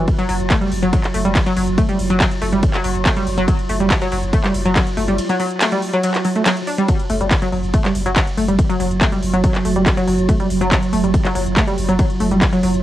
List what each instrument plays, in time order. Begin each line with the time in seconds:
Already playing: synth drone F#3
0.08 kick, closed hi-hat, ride
0.19 synth arpeggio sound F#3, closed hi-hat
0.29 sub bass F#1, synth arpeggio sound F#3, open hi-hat
0.40 sub bass F#1, closed hi-hat
0.50 synth arpeggio sound A3, kick, clap, closed hi-hat, ride
0.61 synth arpeggio sound G3, closed hi-hat
0.71 sub bass F#1, open hi-hat
0.82 sub bass F#1, synth arpeggio sound F#3, closed hi-hat
0.93 synth arpeggio sound F#3, kick, closed hi-hat, ride
1.04 clap, closed hi-hat
1.14 sub bass F#1, synth arpeggio sound A3, open hi-hat
1.25 sub bass F#1, synth arpeggio sound G3, closed hi-hat
1.35 kick, clap, closed hi-hat, ride
1.46 synth arpeggio sound F#3, closed hi-hat
1.57 sub bass F#1, synth arpeggio sound F#3, open hi-hat
1.68 sub bass F#1, closed hi-hat
1.78 synth arpeggio sound A3, kick, closed hi-hat, ride
1.89 synth arpeggio sound G3, closed hi-hat
1.99 sub bass F#1, open hi-hat
2.10 sub bass F#1, synth arpeggio sound F#3, closed hi-hat
2.20 synth arpeggio sound F#3, kick, clap, closed hi-hat, ride
2.31 closed hi-hat
2.42 sub bass F#1, synth arpeggio sound A3, open hi-hat
2.53 sub bass F#1, synth arpeggio sound G3, closed hi-hat
2.63 kick, closed hi-hat, ride
2.74 synth arpeggio sound F#3, clap, closed hi-hat
2.84 sub bass F#1, synth arpeggio sound F#3, open hi-hat
2.95 sub bass F#1, closed hi-hat
3.05 synth arpeggio sound A3, kick, clap, closed hi-hat, ride
3.16 synth arpeggio sound G3, closed hi-hat
3.27 sub bass F#1, open hi-hat
3.38 sub bass F#1, synth arpeggio sound F#3, closed hi-hat
3.48 synth arpeggio sound F#3, kick, closed hi-hat, ride
3.59 closed hi-hat
3.69 sub bass F#1, synth arpeggio sound A3, open hi-hat
3.80 sub bass F#1, synth arpeggio sound G3, closed hi-hat
3.90 kick, clap, closed hi-hat, ride
4.01 synth arpeggio sound F#3, closed hi-hat
4.12 sub bass F#1, synth arpeggio sound F#3, open hi-hat
4.23 sub bass F#1, closed hi-hat
4.33 synth arpeggio sound A3, kick, closed hi-hat, ride
4.44 synth arpeggio sound G3, clap, closed hi-hat
4.54 sub bass F#1, open hi-hat
4.65 sub bass F#1, synth arpeggio sound F#3, closed hi-hat
4.76 synth arpeggio sound F#3, kick, clap, closed hi-hat, ride
4.87 closed hi-hat
4.97 sub bass F#1, synth arpeggio sound A3, open hi-hat
5.08 sub bass F#1, synth arpeggio sound G3, closed hi-hat
5.18 closed hi-hat, ride
5.29 synth arpeggio sound F#3, closed hi-hat
5.40 synth arpeggio sound F#3, open hi-hat
5.51 closed hi-hat
5.61 synth arpeggio sound A3, clap, closed hi-hat, ride
5.72 synth arpeggio sound G3, closed hi-hat
5.82 open hi-hat
5.93 synth arpeggio sound F#3, closed hi-hat
6.03 synth arpeggio sound F#3, closed hi-hat, ride
6.14 clap, closed hi-hat
6.25 synth arpeggio sound F#3, open hi-hat
6.36 synth arpeggio sound A3, closed hi-hat
6.46 synth arpeggio sound F#3, clap, closed hi-hat, ride
6.57 closed hi-hat
6.67 synth arpeggio sound D4, open hi-hat
6.78 synth arpeggio sound G3, closed hi-hat
6.88 synth drone F#3, synth arpeggio sound F#3, kick, closed hi-hat, ride
6.99 closed hi-hat
7.10 sub bass F#1, synth arpeggio sound A3, open hi-hat
7.21 sub bass F#1, synth arpeggio sound G3, closed hi-hat
7.31 kick, clap, closed hi-hat, ride
7.42 synth arpeggio sound F#3, closed hi-hat
7.52 sub bass F#1, synth arpeggio sound F#3, open hi-hat
7.63 sub bass F#1, closed hi-hat
7.74 synth arpeggio sound A3, kick, closed hi-hat, ride
7.85 synth arpeggio sound G3, clap, closed hi-hat
7.95 sub bass F#1, open hi-hat
8.06 sub bass F#1, synth arpeggio sound F#3, closed hi-hat
8.16 synth arpeggio sound F#3, kick, clap, closed hi-hat, ride
8.27 closed hi-hat
8.37 sub bass F#1, synth arpeggio sound A3, open hi-hat
8.48 sub bass F#1, synth arpeggio sound G3, closed hi-hat
8.59 kick, closed hi-hat, ride
8.70 synth arpeggio sound F#3, closed hi-hat
8.80 sub bass F#1, synth arpeggio sound F#3, open hi-hat
8.91 sub bass F#1, closed hi-hat
9.01 synth arpeggio sound A3, kick, clap, closed hi-hat, ride
9.12 synth arpeggio sound G3, closed hi-hat
9.23 sub bass F#1, open hi-hat
9.34 sub bass F#1, synth arpeggio sound F#3, closed hi-hat
9.44 synth arpeggio sound F#3, kick, closed hi-hat, ride
9.55 clap, closed hi-hat
9.65 sub bass F#1, synth arpeggio sound A3, open hi-hat
9.76 sub bass F#1, synth arpeggio sound G3, closed hi-hat
9.86 kick, clap, closed hi-hat, ride
9.97 synth arpeggio sound F#3, closed hi-hat
10.08 sub bass F#1, synth arpeggio sound F#3, open hi-hat
10.19 sub bass F#1, closed hi-hat
10.29 synth arpeggio sound A3, kick, closed hi-hat, ride
10.40 synth arpeggio sound G3, closed hi-hat
10.50 sub bass F#1, open hi-hat
10.61 sub bass F#1, synth arpeggio sound F#3, closed hi-hat
10.72 synth arpeggio sound F#3, kick, clap, closed hi-hat, ride
10.83 closed hi-hat
10.93 sub bass F#1, synth arpeggio sound A3, open hi-hat
11.04 sub bass F#1, synth arpeggio sound G3, closed hi-hat
11.14 kick, closed hi-hat, ride
11.25 synth arpeggio sound F#3, clap, closed hi-hat
11.35 sub bass F#1, synth arpeggio sound F#3, open hi-hat
11.46 sub bass F#1, closed hi-hat
11.57 synth arpeggio sound A3, kick, clap, closed hi-hat, ride
11.68 synth arpeggio sound G3, closed hi-hat
11.78 sub bass F#1, open hi-hat
11.89 sub bass F#1, synth arpeggio sound F#3, closed hi-hat
11.99 synth arpeggio sound F#3, kick, closed hi-hat, ride
12.10 closed hi-hat
12.20 sub bass F#1, synth arpeggio sound A3, open hi-hat
12.31 sub bass F#1, synth arpeggio sound G3, closed hi-hat
12.42 kick, clap, closed hi-hat, ride
12.53 synth arpeggio sound F#3, closed hi-hat
12.63 sub bass F#1, synth arpeggio sound F#3, open hi-hat
12.74 sub bass F#1, closed hi-hat